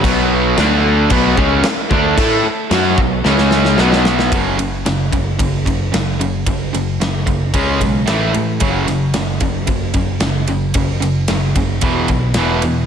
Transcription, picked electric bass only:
\new Staff \with { instrumentName = "Picked electric bass" } { \clef bass \time 4/4 \key fis \minor \tempo 4 = 112 b,,4 d,4 b,,8 cis,8 r8 d,8 | a,8 r8 fis,8 b,,8 cis,4 b,,4 | fis,,8 fis,,8 fis,,8 fis,,8 fis,,4 fis,,4 | fis,,4 fis,,8 fis,,8 cis,8 b,,8 a,,8 a,8 |
fis,,8 fis,,8 fis,,8 fis,,8 fis,,4 fis,,4 | fis,,4 fis,,8 fis,,8 e,,8 b,,8 e,,8 e,8 | }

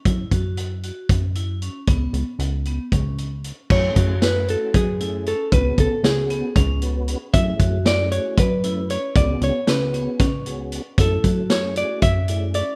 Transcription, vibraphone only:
\new Staff \with { instrumentName = "Vibraphone" } { \time 7/8 \key fis \minor \tempo 4 = 115 e'8 fis'4 fis'4 e'8 cis'8 | b4 r8 b8 cis'4 r8 | e'8 fis'4 fis'4 e'8 cis'8 | b4 r8 b8 cis'4 r8 |
e'8 fis'4 fis'4 e'8 cis'8 | b4 r8 b8 cis'4 r8 | e'8 fis'4 fis'4 e'8 cis'8 | }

